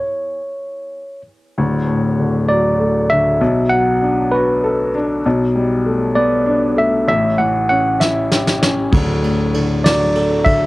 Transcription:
Already playing: C#5
1.58 D1 D2
1.88 A2
2.19 D3
2.49 F#3 D5
2.80 A3
3.10 D3 E5
3.41 B1 B2
3.69 F#3 F#5
4.02 D4
4.32 F#4 B4
4.64 A4
4.95 D4
5.26 B1 B2
5.56 G3
5.86 A3
6.15 B3 D5
6.46 D4
6.77 A3 E5
7.08 A1 A2 E5
7.38 E3 F#5
7.69 C#4 F#5
8.00 E4 E5, snare
8.31 G4, snare
8.47 snare
8.62 C#4, snare
8.91 D1 D2 F#3 A4, kick, ride
9.22 A2 D4, ride
9.54 D3 A4, ride
9.84 F#3 D4 D5, snare, ride
10.15 A3, ride
10.45 D3 A4 E5, kick, ride

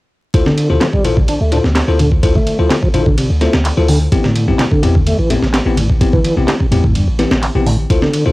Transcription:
0.34 D2 E4 F4 A4 C5, kick, ride
0.46 D3, snare, high conga
0.58 ride
0.70 D2 C3 E4 F4 A4 C5
0.81 F3, snare, clap, ride, high conga
0.93 G3, kick
1.05 A1 E4 F4 A4 C5, ride, low conga
1.17 kick, high conga
1.28 D4, ride
1.41 D2 A3
1.52 D4 E4 F4 A4 C5, ride, low conga
1.64 D2, snare, high conga
1.75 snare, clap, ride
1.88 D2 E4 F4 A4 C5
1.99 D3, ride, high conga, low conga
2.12 kick
2.23 D2 E4 F4 A4 C5, kick, ride
2.35 A3, kick, high conga
2.47 ride
2.59 D2 F3 E4 F4 A4 C5
2.70 snare, clap, ride, high conga
2.83 F3, kick
2.94 A1 D3 E4 F4 A4 C5, ride, low conga
3.06 D3, kick, high conga
3.18 C3, ride
3.30 D2
3.41 A3 E4 F4 A4 C5, snare, ride
3.53 D2, snare, high conga
3.65 clap, ride
3.77 D2 F3 E4 F4 A4 C5
3.88 D3, open hi-hat, high conga
4.12 A1 B3 C4 E4 G4, kick, ride
4.24 A2, snare, high conga
4.36 ride
4.48 A1 G2 B3 C4 E4 G4
4.59 C3, snare, clap, ride, high conga
4.72 D3, kick
4.83 E2 B3 C4 E4 G4, ride, low conga
4.95 kick, high conga
5.07 A3, ride
5.19 A1 E3
5.30 A3 B3 C4 E4 G4, ride, low conga
5.42 A1, snare, high conga
5.54 snare, clap, ride
5.66 A1 B3 C4 E4 G4
5.76 A2, ride, high conga, low conga
5.90 kick
6.01 A1 B3 C4 E4 G4, kick, ride
6.13 E3, kick, high conga
6.24 ride
6.37 A1 C3 B3 C4 E4 G4
6.48 snare, clap, ride, high conga
6.60 C3, kick
6.71 E2 A2 B3 C4 E4 G4, ride, low conga
6.84 A2, kick, high conga
6.95 G2, ride
7.08 A1
7.19 E3 B3 C4 E4 G4, snare, ride
7.31 A1, snare, high conga
7.42 clap, ride
7.55 A1 C3 B3 C4 E4 G4
7.66 A2, open hi-hat, high conga
7.90 D2 E4 F4 A4 C5, kick, ride
8.02 D3, snare, high conga
8.13 ride
8.26 D2 C3 E4 F4 A4 C5

